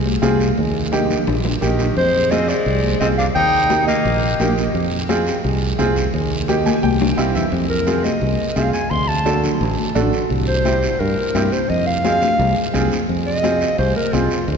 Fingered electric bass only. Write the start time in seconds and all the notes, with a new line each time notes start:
Already playing: C2
0.23 C2
0.58 D#2
1.28 A#1
1.62 A#1
1.97 F2
2.66 C2
3.01 C2
3.36 D#2
4.05 A#1
4.40 A#1
4.75 F2
5.45 C2
5.79 C2
6.14 D#2
6.84 C2
7.18 C2
7.35 E2
7.52 F2
8.22 C2
8.56 C2
8.91 D2
9.61 A1
9.96 A1
10.31 C2
11.01 G2
11.35 G2
11.70 F2
12.39 C2
12.75 C2
13.09 F2
13.79 C2
14.13 C2
14.48 D2